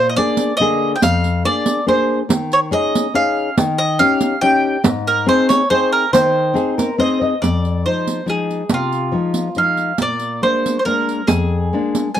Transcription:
Already playing: A#2
0.09 D#5
0.16 A#3 D4 G#4 D5, riq
0.37 riq
0.57 D3 A#3 D#5
0.61 G#4
0.96 G5
1.02 F2 F5, riq
1.24 riq
1.45 A#3 D4 G#4 D5
1.66 riq
1.87 A#3 D4 G#4 C5
2.29 D#3, riq
2.52 C#5, riq
2.71 C#4 D#4 G#4 D#5, riq
2.95 riq
3.14 C#4 D#4 G#4 F5
3.57 D#3, riq
3.78 D#5, riq
3.99 C#4 D#4 G4 F5, riq
4.21 riq
4.41 C#4 D#4 G4 G5
4.84 G#2, riq
5.07 A#4, riq
5.26 C4 D#4 G#4 C5, riq
5.49 C#5, riq
5.70 C4 D#4 G#4 C5
5.92 A#4
6.13 D#3 C5, riq
6.54 C4 D#4 G#4, riq
6.78 A#4, riq
6.98 C4 D#4 G#4 C5 D#5
7.21 D#5
7.42 F2 D5, riq
7.65 riq
7.85 F3 G#3 D#4 C5
8.07 riq
8.26 F3 G#3 D#4 G#4, riq
8.51 riq
8.69 C3, riq
8.74 F4
8.92 riq
9.12 F3 G#3 D#4
9.34 riq
9.55 F3 G#3 D#4 F5, riq
9.77 riq
9.98 A#2 D5, riq
10.19 riq
10.42 G#3 A#3 D4 C5
10.66 riq
10.79 C5
10.85 G#3 A#3 D4 A#4, riq
11.09 riq
11.27 F2 G#4, riq
11.73 G#3 A#3 D4
11.95 riq
12.15 G#3 G#5, riq

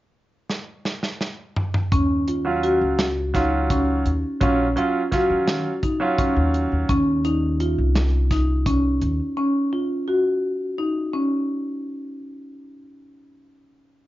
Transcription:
0.49 snare
0.85 snare
1.03 snare
1.21 snare
1.57 mid tom
1.74 mid tom
1.92 D#2 C#4, kick, closed hi-hat
2.28 F4, closed hi-hat
2.45 F#3 C#4 F4
2.63 F#4, closed hi-hat
2.81 C#2
2.99 snare, closed hi-hat
3.34 F#3 C#4 D#4 F4, kick, snare, closed hi-hat
3.70 C#4, kick, closed hi-hat
4.05 D#2, closed hi-hat
4.41 A#1 F#3 C#4 F4, kick, closed hi-hat
4.76 F#3 C#4 F4, closed hi-hat
5.11 F#3 C#4 F4 F#4, kick, snare, closed hi-hat
5.30 D#3
5.47 snare, closed hi-hat
5.83 D#4, kick, closed hi-hat
6.00 F#3 C#4 F4
6.18 C#4, kick, closed hi-hat
6.36 D#2
6.54 closed hi-hat
6.72 D#2
6.89 D#2 C#4, kick, closed hi-hat
7.25 D#4, closed hi-hat
7.60 F4, closed hi-hat
7.78 C2
7.95 snare, closed hi-hat
8.31 D#4, kick, snare, closed hi-hat
8.66 C#4, kick, closed hi-hat
9.02 D#2, closed hi-hat
9.37 C#4
9.73 F4
10.08 F#4
10.79 D#4
11.14 C#4

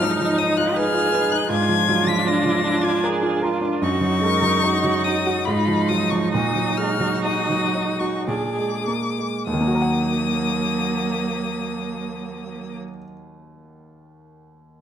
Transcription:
Already playing: G#2 F3 F#3 D#4 F6
0.02 D#4
0.20 F3
0.38 D#4 D#6
0.57 F4 F#6
0.75 G#4 B4 F6
0.94 F4
1.12 B4
1.32 D#4 F#6
1.50 G#2 D4 F4 G#6
1.69 F3
1.88 F#3
2.07 F3 B6
2.26 D4 A#6
2.46 F3
2.64 D4
2.83 F4 G#6
3.04 G#4 A#4
3.23 F4
3.42 F4 A#4
3.61 D4
3.82 F#2 D#4 F#4 C#6
4.01 F#3
4.21 G#3 A#4
4.42 F#3
4.63 D#4 F#4
4.84 F#3
5.04 D#4 D#6
5.26 F#4
5.45 G#2 D#4 F4 B5
5.68 F3
5.88 F#3 D#6
6.10 F3 C#6
6.32 A#2 F#4 D#6
6.56 F#3
6.78 G#3 F6
7.00 F#3
7.25 D#4 D#6
7.50 F#3
7.75 D#4
8.00 F#4 C#6
8.28 A#2 D4 G#4 D6
8.57 G#3
8.88 A#3
9.19 G#3
9.47 D#2 F#3 A#3 D#6
9.53 D#3
9.61 A#3
9.68 F#4
9.75 A#4
9.82 F#5

